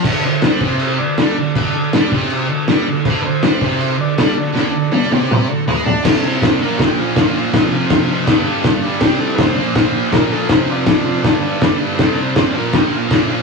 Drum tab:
CC |x-x-x-x-|x-x-x-x-|x-x-x-x-|--------|
SD |--o---o-|--o---o-|--o---o-|o-------|
T1 |--------|--------|--------|--oo----|
T2 |--------|--------|--------|----o---|
FT |--------|--------|--------|------oo|
BD |o--o----|o--o----|o--o----|--------|

CC |x-x-x-x-|x-x-x-x-|x-x-x-x-|x-x-x-x-|
SD |o-o-o-o-|o-o-o-o-|o-o-o-o-|o-o-o-o-|
T1 |--------|--------|--------|--------|
T2 |--------|--------|--------|--------|
FT |--------|--------|--------|--------|
BD |o-o-o-o-|o-o-o-o-|o-o-o-o-|o-o-o-o-|

CC |x-x-x-x-|
SD |o-o-o-o-|
T1 |--------|
T2 |--------|
FT |--------|
BD |o-o-o-o-|